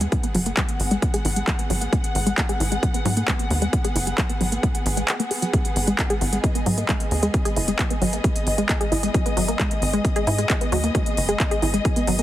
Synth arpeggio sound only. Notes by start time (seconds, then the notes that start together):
0.01 G#3
0.12 F#3
0.24 B3
0.35 F#3
0.46 A#3
0.57 G#3
0.91 G#3
1.14 G#4
1.25 E4
1.36 G#3
1.47 F#3
1.59 B3
1.70 F#3
1.81 A#3
1.93 G#3
2.27 G#3
2.49 G#4
2.60 E4
2.72 G#3
2.83 F#3
2.94 B3
3.05 F#3
3.17 A#3
3.28 G#3
3.62 G#3
3.85 G#4
3.96 E4
4.07 G#3
4.18 F#3
4.30 B3
4.41 F#3
4.52 A#3
4.63 G#3
4.97 G#3
5.20 A#3
5.31 G#4
5.42 F#3
5.53 G#3
5.87 G#3
6.10 G#4
6.21 E4
6.33 G#3
6.44 F#3
6.55 B3
6.66 F#3
6.78 A#3
6.89 G#3
7.23 G#3
7.45 G#4
7.57 E4
7.68 G#3
7.79 F#3
7.91 B3
8.02 F#3
8.13 A#3
8.24 G#3
8.58 G#3
8.81 G#4
8.92 E4
9.03 G#3
9.14 F#3
9.26 B3
9.37 F#3
9.48 A#3
9.59 G#3
9.93 G#3
10.16 G#4
10.27 E4
10.39 G#3
10.50 F#3
10.61 B3
10.72 F#3
10.84 A#3
10.95 G#3
11.29 G#3
11.51 G#4
11.62 E4
11.74 G#3
11.85 F#3
11.96 B3
12.07 F#3
12.19 A#3